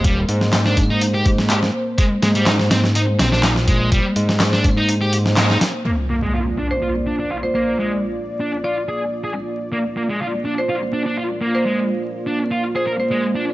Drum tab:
HH |x-x-x-x-x-x-x---|x-xxx-x-x-x-x-x-|x-x-x-x-x-x-x-x-|----------------|
CP |----x-------x---|----x-------x---|----x-------x---|----------------|
SD |---ooo-----o-o--|--o-oooo--oooo--|---ooo-----oooo-|----------------|
BD |o-----o---o-----|o-------------o-|o-----o---------|----------------|

HH |----------------|----------------|----------------|
CP |----------------|----------------|----------------|
SD |----------------|----------------|----------------|
BD |----------------|----------------|----------------|